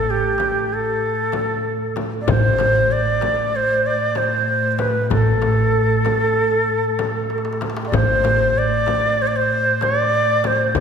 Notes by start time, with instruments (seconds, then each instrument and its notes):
Already playing: upright bass A1, double bass A2, ney A4
0.07 ney G4, darbuka ka
0.38 darbuka tek, frame drum
0.70 ney A4, darbuka ka
1.01 darbuka ka
1.32 darbuka tek, frame drum
1.64 darbuka ka
1.96 darbuka tek, frame drum
2.21 ney D5
2.26 upright bass A1, double bass A2, darbuka dum, frame drum
2.31 ney C5
2.58 darbuka tek, frame drum
2.90 ney D5, darbuka ka
3.21 darbuka tek, frame drum
3.53 ney C5, darbuka ka
3.84 ney D5, darbuka ka
4.15 ney C5, darbuka tek, frame drum
4.47 darbuka ka
4.71 ney C5
4.79 ney B4, darbuka tek, frame drum
5.10 upright bass A1, ney A4, darbuka dum, frame drum
5.42 darbuka tek, frame drum
6.05 darbuka tek, frame drum
6.36 darbuka ka
6.68 darbuka ka
6.99 darbuka tek, frame drum
7.30 darbuka tek
7.38 darbuka ka
7.45 darbuka tek
7.53 darbuka ka
7.61 darbuka tek, frame drum
7.70 darbuka ka
7.77 darbuka tek
7.85 ney D5, darbuka ka
7.92 upright bass A1, double bass A2, ney C5, darbuka dum, frame drum
8.24 darbuka tek, frame drum
8.55 ney D5, darbuka ka
8.86 darbuka tek, frame drum
9.18 ney C5, darbuka ka
9.27 ney D5
9.36 ney C5
9.50 darbuka ka
9.81 ney D5, darbuka tek, frame drum
10.13 darbuka ka
10.44 ney C5, darbuka tek, frame drum
10.75 upright bass A1, frame drum, darbuka dum